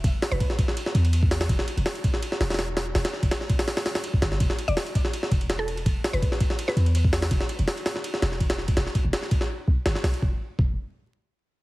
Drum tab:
RD |x-----x-x---x---x---x-x-x-------|x---x-x---x-x---x---------------|--x---x-x---x-----------x---x---|x---x-x---x-x---x---x-x-x---x-x-|
HH |----o-----------------------o-o-|--------o-----------o-ooo---o---|o-------------o-o-o-o-o---------|--------o-----------------------|
SD |----o-----o---o---o---------o-o-|--o-----o-----o---o-o-ooo---o---|o-o-o---o-o---o-o-o-o-o-----o-o-|--o-----o-----o---o-----o-------|
BD |o-------o---o-------------o-----|o-----------o-------------------|------o-----o-------------o-----|o-----------o-------o-----------|

RD |x-----x-x---x---x---x-x-x-------|x---x-x---x-----x---x---x-x---x-|x---x---x---x-----------x-----x-|--------------------------------|
HH |----o-----------------------o-o-|--------o---o-------------------|----------------------------o---|--------------------------------|
SD |----o-----o---o---o---------o-o-|--o-----o---o-o---o-o-o---o-o---|o-o-----o-o---o---------o-o-o---|--------------------------------|
BD |o-------o---o-------------o-----|o-----------------------o-----o-|----o-------o-------------------|o-------o-----------------------|